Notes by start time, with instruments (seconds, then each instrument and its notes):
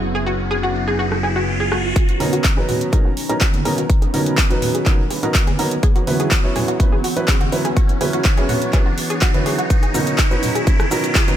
Already playing: analog synth bass F#1, analog synth pad C#3 F#3 B3 E4, riser
0.03 shaker
0.15 synth pluck G#4, shaker
0.27 synth pluck F#4, shaker
0.39 shaker
0.51 synth pluck G#4, shaker
0.63 synth pluck F#4, shaker
0.75 shaker
0.88 synth pluck G#4, shaker
0.99 synth pluck F#4, shaker
1.12 cross-stick, shaker
1.23 synth pluck G#4, shaker
1.36 synth pluck F#4, shaker
1.48 shaker
1.60 synth pluck G#4, shaker
1.72 synth pluck F#4, cross-stick, shaker
1.84 shaker
1.96 analog synth pad D#3 B3 C#4 A#5, synth pluck F#4, kick, closed hi-hat, riser
2.09 closed hi-hat
2.20 felt piano B2 F#3 B3 C#4 D#4 A#4, synth pluck G#4, open hi-hat, high conga
2.33 synth pluck F#4, closed hi-hat
2.44 kick, clap, closed hi-hat, high bongo
2.57 felt piano B2 F#3 B3 C#4 D#4 B4, synth pluck G#4
2.69 synth pluck F#4, open hi-hat, low conga
2.81 closed hi-hat
2.92 felt piano B2 F#3 B3 C#4 D#4 A#4, synth pluck G#4, kick, closed hi-hat, high bongo, high conga
3.05 synth pluck F#4
3.17 open hi-hat
3.29 felt piano B2 F#3 B3 C#4 D#4 A#4, synth pluck G#4, closed hi-hat
3.41 synth pluck F#4, kick, clap, closed hi-hat
3.53 closed hi-hat, high bongo, high conga
3.65 felt piano B2 F#3 B3 C#4 D#4 A#4, synth pluck G#4, open hi-hat
3.78 synth pluck F#4, closed hi-hat
3.90 analog synth pad B4, kick, closed hi-hat
4.02 synth pluck G#4, closed hi-hat, high bongo
4.14 felt piano B2 F#3 B3 C#4 D#4 A#4, synth pluck F#4, open hi-hat, high conga
4.26 closed hi-hat
4.38 synth pluck G#4, kick, clap, closed hi-hat
4.50 felt piano B2 F#3 B3 C#4 D#4 B4, synth pluck F#4, closed hi-hat
4.62 open hi-hat, high bongo, low conga
4.75 synth pluck G#4, closed hi-hat
4.86 felt piano B2 F#3 B3 C#4 D#4 A#4, synth pluck F#4, kick, clap, closed hi-hat, high conga
5.10 synth pluck G#4, open hi-hat, high bongo
5.23 felt piano B2 F#3 B3 C#4 D#4 A#4, synth pluck F#4, closed hi-hat
5.34 kick, clap, closed hi-hat
5.47 synth pluck G#4, closed hi-hat, high conga
5.59 felt piano F#3 B3 C#4 D#4 A#4, synth pluck F#4, open hi-hat
5.71 closed hi-hat, high bongo
5.83 analog synth pad E3 F#4 C#5, synth pluck G#4, kick, closed hi-hat
5.96 synth pluck F#4, closed hi-hat
6.07 felt piano F#3 B3 C#4 E4 B4, open hi-hat, high conga
6.20 synth pluck G#4, closed hi-hat, high bongo
6.31 synth pluck F#4, kick, clap, closed hi-hat
6.44 felt piano F#3 B3 C#4 E4 C#5
6.56 synth pluck G#4, open hi-hat, low conga
6.68 synth pluck F#4, closed hi-hat
6.80 felt piano F#3 B3 C#4 E4 B4, kick, closed hi-hat, high bongo, high conga
6.92 synth pluck G#4
7.04 synth pluck F#4, open hi-hat
7.17 felt piano F#3 B3 C#4 E4 B4, closed hi-hat
7.28 synth pluck G#4, kick, clap, closed hi-hat, high bongo
7.41 synth pluck F#4, closed hi-hat, high conga
7.52 felt piano F#3 B3 C#4 E4 B4, open hi-hat
7.65 synth pluck G#4, closed hi-hat
7.77 synth pluck F#4, kick, closed hi-hat
7.89 closed hi-hat, high bongo
8.01 felt piano F#3 B3 C#4 E4 B4, synth pluck G#4, open hi-hat, high conga
8.13 synth pluck F#4, closed hi-hat
8.25 kick, clap, closed hi-hat
8.37 felt piano F#3 B3 C#4 E4 C#5, synth pluck G#4, closed hi-hat, high bongo
8.49 synth pluck F#4, open hi-hat, low conga
8.62 closed hi-hat
8.73 felt piano F#3 B3 C#4 E4 B4, synth pluck G#4, kick, clap, closed hi-hat, high conga
8.86 synth pluck F#4
8.98 open hi-hat, high bongo
9.10 synth pluck G#4, closed hi-hat
9.21 synth pluck F#4, kick, clap, closed hi-hat
9.34 felt piano F#3 B3 C#4 E4 B4, closed hi-hat, high conga
9.46 synth pluck G#4, open hi-hat, high bongo
9.58 synth pluck F#4, closed hi-hat
9.70 analog synth pad D#3 A#5, kick, closed hi-hat, shaker
9.83 synth pluck G#4, closed hi-hat
9.94 felt piano B2 F#3 B3 C#4 D#4 A#4, synth pluck F#4, open hi-hat, high conga, shaker
10.07 closed hi-hat, shaker
10.18 synth pluck G#4, kick, clap, closed hi-hat, shaker
10.31 felt piano B2 F#3 B3 C#4 D#4 B4, synth pluck F#4, shaker
10.43 open hi-hat, low conga, shaker
10.55 synth pluck G#4, closed hi-hat, shaker
10.66 kick, closed hi-hat, high bongo, high conga, shaker
10.79 synth pluck G#4, cross-stick, shaker
10.91 felt piano B2 F#3 B3 C#4 D#4 A#4, synth pluck F#4, open hi-hat, shaker
11.04 closed hi-hat, shaker
11.15 synth pluck G#4, kick, clap, closed hi-hat, shaker
11.28 felt piano B2 F#3 B3 C#4 D#4 B4, synth pluck F#4, closed hi-hat, high bongo, high conga, shaker